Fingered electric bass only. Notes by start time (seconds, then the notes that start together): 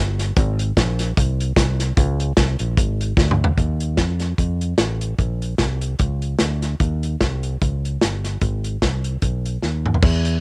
Already playing: G1
0.37 G#1
0.77 A#1
1.18 C2
1.57 C2
1.97 C#2
2.37 C2
2.60 A#1
2.78 G#1
3.17 D2
3.58 D#2
3.98 F2
4.38 F2
4.78 A1
5.19 A#1
5.60 C2
5.99 C#2
6.41 D2
6.80 D#2
7.21 C2
7.62 C#2
8.03 G1
8.42 G#1
8.82 C2
9.22 B1
9.63 D#2
10.03 E2